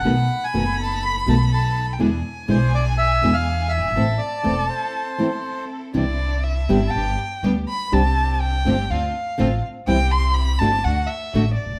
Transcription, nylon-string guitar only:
\new Staff \with { instrumentName = "Nylon-string guitar" } { \time 4/4 \key a \minor \tempo 4 = 122 <b, dis a b fis'>8 r8 <b, dis a b fis'>8 r4 <b, dis a b fis'>8 r4 | <b, d gis b e'>8 r8 <b, d gis b e'>8 r4 <b, d gis b e'>8 r4 | <e a c' e'>8 r8 <e a c' e'>8 r4 <e a c' e'>8 r4 | \key c \major <c e g d' e'>8 r4 <d g b d' g'>8 r4 <d g b d' g'>8 r8 |
<c g c' d' g'>8 r4 <d a c' f'>8 r4 <d a c' f'>8 r8 | <c e g c' e'>8 r4 <d a d' fis'>8 r4 <d a d' fis'>8 r8 | }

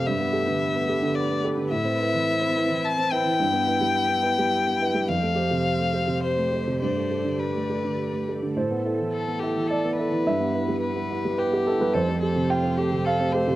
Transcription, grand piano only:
\new Staff \with { instrumentName = "Grand piano" } { \time 3/4 \key a \minor \tempo 4 = 107 << { r2. | r2. | r2. | r2. |
r2. | c''2 d''4 | e''2 b'16 g'16 a'16 b'16 | c''4 g''4 f''4 | } \\ { g,16 b16 <g' a'>16 d8 b16 <g' a'>16 d8 b16 <g' a'>16 d16 | a,16 c'16 <e' b'>16 e8 c'16 <e' b'>16 e8 c'16 <e' b'>16 e16 | g,16 b16 <e' b'>16 g8 b16 <e' b'>16 g8 b16 <e' b'>16 g16 | f,16 a16 <g' c''>16 c8 a16 <g' c''>16 c8 a16 <g' c''>16 c16 |
g,16 a16 <g' a'>16 d8 a16 <g' a'>16 d8 a16 <g' a'>16 d16 | a,16 b16 <e' a'>16 e8 b16 <e' a'>16 e8 b16 <e' a'>16 e16 | g,16 b16 <e' b'>16 g8 b16 <e' b'>16 g8 b16 <e' b'>16 g16 | f,16 c'16 <g' a'>16 c8 c'16 <g' a'>16 c8 c'16 <g' a'>16 c16 | } >> }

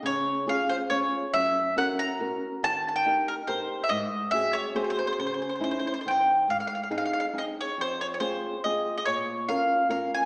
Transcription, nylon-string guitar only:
\new Staff \with { instrumentName = "Nylon-string guitar" } { \time 3/4 \key cis \minor \tempo 4 = 140 cis4 <cis' eis' gis'>4 <cis' eis' gis'>4 | fis,4 <cis' fis' ais'>4 <cis' fis' ais'>4 | dis4 <dis' g' ais'>4 <dis' g' ais'>4 | gis,4 <bis fis' gis'>4 <bis fis' gis'>4 |
cis4 <cis' dis' e'>4 dis4 | \key aes \major aes,4 <c' ees' aes'>4 <c' ees' aes'>4 | f,4 <c' f' aes'>4 <c' f' aes'>4 | bes,4 <des' f' bes'>4 <des' f' bes'>4 | }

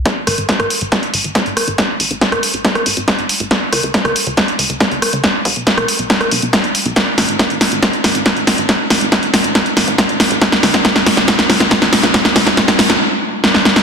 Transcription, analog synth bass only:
\new Staff \with { instrumentName = "Analog synth bass" } { \clef bass \time 4/4 \key gis \minor \tempo 4 = 139 r8 gis,,16 gis,,16 r16 gis,,16 r16 gis,,16 r8 gis,,16 gis,,16 r16 gis,,16 r16 gis,,16 | r8 gis,,16 gis,,16 r16 gis,,16 r16 gis,,16 r8 gis,,16 gis,,16 r16 gis,,16 r16 gis,,16 | r8 cis,16 cis,16 r16 cis,16 r16 cis,16 r8 cis,16 cis,16 r16 cis,16 r16 cis,16 | r8 b,,16 b,,16 r16 b,,16 r16 b,,16 r8 b,,16 b,,16 r16 b,,16 r16 b,,16 |
r8 gis,,16 gis,,16 r16 gis,,16 r16 gis,,16 r8 gis,,16 gis,,16 r16 gis,,16 r16 gis,,16 | r8 gis,,16 gis,,16 r16 gis,,16 r16 gis,,16 r8 gis,,16 gis,,16 r16 gis,,16 r16 gis,,16 | r8 cis,16 cis,16 r16 cis,16 r16 cis,16 r8 cis,16 cis,16 r16 cis,16 r16 cis,16 | r8 b,,16 b,,16 r16 b,,16 r16 b,,16 r2 | }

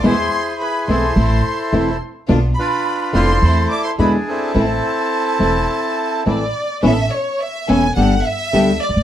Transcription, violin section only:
\new Staff \with { instrumentName = "Violin section" } { \time 4/4 \key a \minor \tempo 4 = 106 c'''4 b''8 c'''2 r8 | r8 b''4 c'''4 d'''16 c'''16 b''8 a''8~ | a''2. d''4 | \key a \major e''8 cis''8 e''8 gis''8 fis''8 e''4 d''8 | }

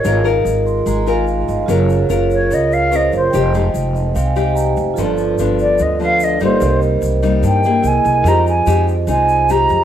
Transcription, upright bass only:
\new Staff \with { instrumentName = "Upright bass" } { \clef bass \time 4/4 \key f \minor \tempo 4 = 146 aes,,4 aes,,4 aes,,4. g,,8 | ges,,4 ges,,4 des,4. ges,,8 | f,,4 f,,4 c,4. f,,8 | g,,4 g,,4 d,4. g,,8 |
c,4 c,4 g,4 c,8 c,8 | f,4 f,4 c,4. f,8 | }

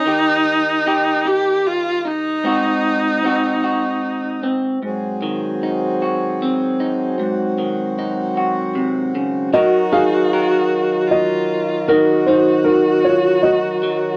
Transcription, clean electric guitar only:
\new Staff \with { instrumentName = "Clean electric guitar" } { \time 3/4 \key aes \mixolydian \tempo 4 = 76 << { <ees' g'>4 <ees' g'>8 ees'4 ees'8 | <c' ees' ges'>4 <c' ees' ges'>8 ges'4 c'8 | r4 ees'8 ges'8 c'8 ees'8 | r4 ees'8 ges'4. |
bes'4 bes'2 | ges'4 r2 | } \\ { ees2. | aes,2. | aes,8 ees2~ ees8 | aes,8 ees4. c8 des8 |
ees8 ees'2~ ees'8 | ees8 ees'2 ges8 | } >> }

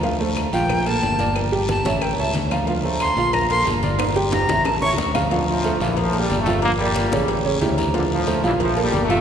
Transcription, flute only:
\new Staff \with { instrumentName = "Flute" } { \time 4/4 \key d \minor \tempo 4 = 182 r4. g''4 a''4. | r4 a''4 g''8 a''8 r4 | r4 c'''4 bes''8 c'''8 r4 | r4 bes''4 a''8 cis'''8 r4 |
r1 | r1 | r1 | }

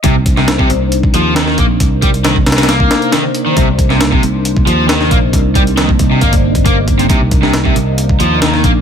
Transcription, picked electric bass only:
\new Staff \with { instrumentName = "Picked electric bass" } { \clef bass \time 4/4 \key c \minor \tempo 4 = 136 c,4. c,4 ees,4 bes,,8 | c,4. c,4 r4. | c,4. c,4 ees,4 bes,,8 | c,4. c,8 g,,2 |
c,4. c,4 ees,4 bes,,8 | }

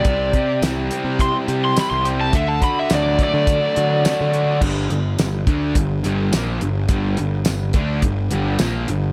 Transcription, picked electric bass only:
\new Staff \with { instrumentName = "Picked electric bass" } { \clef bass \time 4/4 \key c \lydian \tempo 4 = 105 c,8 r8 c,8 r16 c8 r16 c8 r16 c,8. | d,8 r8 d,8 r16 d8 r16 d8 r16 d8. | g,,8 g,,8 g,,8 d,8 g,,8 g,,8 bes,,8 g,,8 | g,,8 g,,8 g,,8 d,8 g,,8 g,,8 bes,,8 g,,8 | }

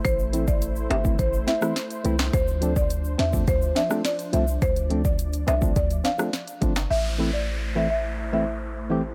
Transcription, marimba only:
\new Staff \with { instrumentName = "Marimba" } { \time 4/4 \key a \minor \tempo 4 = 105 c''8 r16 d''16 r8 e''16 r16 c''16 r16 e''16 r4 r16 | c''8 r16 d''16 r8 e''16 r16 c''16 r16 e''16 r16 d''16 r16 e''16 r16 | c''8 r16 d''16 r8 e''16 r16 d''16 r16 f''16 r4 r16 | e''8 r16 d''16 r8 e''16 e''16 r8 e''16 r4 r16 | }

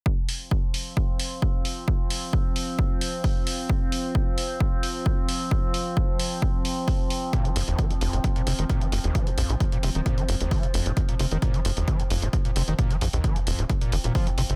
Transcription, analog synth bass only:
\new Staff \with { instrumentName = "Analog synth bass" } { \clef bass \time 4/4 \key c \phrygian \tempo 4 = 132 r1 | r1 | r1 | r1 |
r8 f,,16 f,,16 r8 f,,16 f,,16 r8 f,,16 f,,16 r8 f,,16 f,,16 | r8 bes,,16 bes,,16 r8 ees,,16 ees,,16 r8 f,,16 f,,16 r8 f,,16 f,,16 | r8 f,,16 f,,16 r8 f,,16 f,,16 r8 f,,16 f,,16 r8 f,,16 f,,16 | r8 bes,,16 bes,,16 r8 ees,,16 ees,,16 r8 f,,16 f,,16 r8 g,,16 g,,16 | }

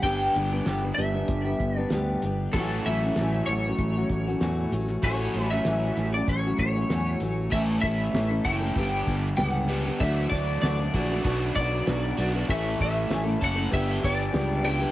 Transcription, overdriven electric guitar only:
\new Staff \with { instrumentName = "Overdriven electric guitar" } { \time 4/4 \key a \mixolydian \tempo 4 = 96 <g, d g b d' g'>1 | <a, e a cis' a'>1 | <a, e a cis' a'>1 | <a, e a cis' a'>4. <a, e a cis' a'>8 <g, d g b d' g'>4. <g, d g b d' g'>8 |
<d fis a d' fis'>4. <d fis a d' fis'>8 <b, fis b d' fis'>4. <b, fis b d' fis'>8 | <a, e a cis' a'>4. <a, e a cis' a'>8 <g, d g b d' g'>4. <g, d g b d' g'>8 | }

